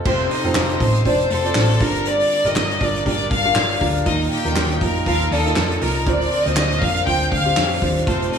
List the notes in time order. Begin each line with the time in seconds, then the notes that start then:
0.05 F1 C3 C4 F4 A4 C5, kick, crash
0.31 D#4 D#5, hi-hat pedal, open hi-hat
0.44 F1 C4 F4 A4 C5, open hi-hat
0.55 F1, snare, clap, hi-hat pedal, open hi-hat
0.69 hi-hat pedal, open hi-hat
0.80 A1 C4 F4 A4 C5 D#5, kick, hi-hat pedal, open hi-hat
0.94 hi-hat pedal, open hi-hat
1.05 F1 C4 D4 F4 A4 C5 D5, kick, hi-hat pedal, open hi-hat
1.19 hi-hat pedal, open hi-hat
1.30 F1 C4 A4 C5, hi-hat pedal, open hi-hat
1.44 C4 F4 A4 D5, hi-hat pedal, open hi-hat
1.55 A1, snare, clap, hi-hat pedal, open hi-hat
1.69 hi-hat pedal, open hi-hat
1.80 G1 G2 D3 D4 F4 G4 A#4, kick, snare, hi-hat pedal, open hi-hat
1.94 hi-hat pedal, open hi-hat
2.05 D5, hi-hat pedal, open hi-hat
2.19 hi-hat pedal, open hi-hat
2.30 hi-hat pedal, open hi-hat
2.45 G1 D3 F4 G4 A#4 D#5, hi-hat pedal, open hi-hat
2.55 G1, snare, clap, hi-hat pedal, open hi-hat
2.70 hi-hat pedal, open hi-hat
2.81 G1 D4 F4 G4 A#4 D5, kick, hi-hat pedal, open hi-hat
2.95 hi-hat pedal, open hi-hat
3.05 G1 D4 F4 G4 A#4 D5, kick, hi-hat pedal, open hi-hat
3.20 hi-hat pedal
3.31 G1 F5, kick, hi-hat pedal, open hi-hat
3.45 D4 F4 G4 A#4, open hi-hat
3.56 G1, snare, clap, hi-hat pedal, open hi-hat
3.70 hi-hat pedal, open hi-hat
3.80 D2 D4 F4 G4 A#4, kick, snare, hi-hat pedal, open hi-hat
3.95 hi-hat pedal, open hi-hat
4.06 D#2 A#2 A#3 D#4 F4 A#4 D#5, kick, hi-hat pedal, open hi-hat
4.21 hi-hat pedal, open hi-hat
4.32 G4 G5, hi-hat pedal, open hi-hat
4.45 D#2 A#3 D#4 F4 A#4, hi-hat pedal, open hi-hat
4.56 D#2, snare, clap, hi-hat pedal, open hi-hat
4.70 hi-hat pedal
4.81 F2 A#3 D#4 F4 A#4, kick, hi-hat pedal, open hi-hat
4.95 open hi-hat
5.06 D#2 A#3 D#4 F4 A4 A#4 F5, kick, hi-hat pedal, open hi-hat
5.21 hi-hat pedal, open hi-hat
5.31 D#2 D#4 A4 D#5, hi-hat pedal, open hi-hat
5.45 A#3 D#4 F4, hi-hat pedal, open hi-hat
5.56 F2, snare, clap, hi-hat pedal, open hi-hat
5.70 hi-hat pedal
5.81 C2 A#3 D#4 F4 A#4, snare, hi-hat pedal, open hi-hat
5.95 open hi-hat
6.06 D2 D3 C4 D4 F4 A#4 D5, kick, hi-hat pedal, open hi-hat
6.21 hi-hat pedal, open hi-hat
6.32 hi-hat pedal, open hi-hat
6.45 D2 A#3 C4 F4 C5 D#5, hi-hat pedal, open hi-hat
6.57 D2, snare, clap, hi-hat pedal, open hi-hat
6.71 hi-hat pedal, open hi-hat
6.81 F2 C4 D4 F4 A#4 F5, kick, hi-hat pedal, open hi-hat
6.95 hi-hat pedal, open hi-hat
7.06 D2 C4 D4 F4 C5 G5, kick, hi-hat pedal, open hi-hat
7.21 hi-hat pedal
7.32 D2 F5, kick, hi-hat pedal, open hi-hat
7.45 C4 D4 F4 G4, open hi-hat
7.57 F2, snare, clap, hi-hat pedal, open hi-hat
7.71 hi-hat pedal, open hi-hat
7.82 D#2 C4 D4 F4 C5, kick, snare, hi-hat pedal, open hi-hat
7.96 hi-hat pedal, open hi-hat
8.06 F1 C3 A3 C4 F4 A4 C5, kick, hi-hat pedal, open hi-hat
8.22 hi-hat pedal
8.32 D#4 D#5, hi-hat pedal, open hi-hat